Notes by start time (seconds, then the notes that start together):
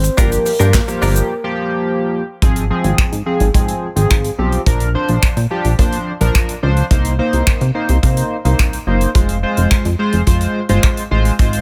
Already playing: C5
0.04 muted clean electric guitar stroke, closed hi-hat, shaker
0.17 G1 F3 A#3 D4 F4 G4 A#4, kick, closed hi-hat, shaker
0.32 muted clean electric guitar stroke, closed hi-hat, shaker
0.46 muted clean electric guitar stroke, open hi-hat, shaker
0.59 G2 F3 A#3 D4 F4 G4 A#4, closed hi-hat, shaker
0.74 kick, snare, clap, closed hi-hat, shaker
0.88 F3 A#3 G4, muted clean electric guitar stroke, closed hi-hat, shaker
1.02 G1 D4 F4 A#4, open hi-hat, shaker
1.16 muted clean electric guitar stroke, closed hi-hat, shaker
1.44 F3 A#3 G4
2.42 G#1 F3 C4 G#4, kick, closed hi-hat
2.56 closed hi-hat
2.70 F3 C4 G#4
2.84 G#1, closed hi-hat
2.98 finger snap, kick, closed hi-hat
3.12 G#2, closed hi-hat
3.26 F3 C4 G#4
3.40 G#1, closed hi-hat
3.54 G#2 F3 C4 G#4, kick, closed hi-hat
3.68 closed hi-hat
3.96 G#1 F3 C4 G#4, closed hi-hat
4.10 G#1, finger snap, kick, closed hi-hat
4.24 closed hi-hat
4.38 B1 F3 C4 G4
4.52 closed hi-hat
4.66 A#1 F3 D4 A#4, kick, closed hi-hat
4.80 closed hi-hat
4.94 F3 D4 C5
5.09 A#1, closed hi-hat
5.23 A#2, finger snap, kick, closed hi-hat
5.37 A#2, closed hi-hat
5.50 F3 D4 G4
5.65 A#1, closed hi-hat
5.78 A#2 F3 D4 C5, kick, closed hi-hat
5.93 closed hi-hat
6.20 A#1 F3 D4 A#4, closed hi-hat
6.35 finger snap, kick, closed hi-hat
6.49 closed hi-hat
6.62 C#2 F3 D4 C5
6.77 closed hi-hat
6.91 C2 A#3 D#4 C5, kick, closed hi-hat
7.05 closed hi-hat
7.19 A#3 D#4 C5
7.33 C2, closed hi-hat
7.47 C3, finger snap, kick, closed hi-hat
7.61 C3, closed hi-hat
7.75 A#3 D#4 C5
7.89 C2, closed hi-hat
8.03 C3 A#3 D#4 C5, kick, closed hi-hat
8.17 closed hi-hat
8.45 C2 A#3 D#4 C5, closed hi-hat
8.59 C2, finger snap, kick, closed hi-hat
8.73 closed hi-hat
8.87 F#1 A#3 D#4 C5
9.01 closed hi-hat
9.15 F1 G#3 F4 C5, kick, closed hi-hat
9.29 closed hi-hat
9.43 G#3 F4 C5
9.57 F1, closed hi-hat
9.71 finger snap, kick, closed hi-hat
9.85 F2, closed hi-hat
9.99 G#3 F4 C5
10.13 F1, closed hi-hat
10.26 F2 G#3 F4 C5, kick, closed hi-hat
10.41 closed hi-hat
10.69 G1 G#3 F4 C5, closed hi-hat
10.83 finger snap, kick, closed hi-hat
10.97 closed hi-hat
11.11 A1 G#3 F4 C5
11.25 closed hi-hat
11.39 G#1 G#3 F4 C5, kick, closed hi-hat
11.53 closed hi-hat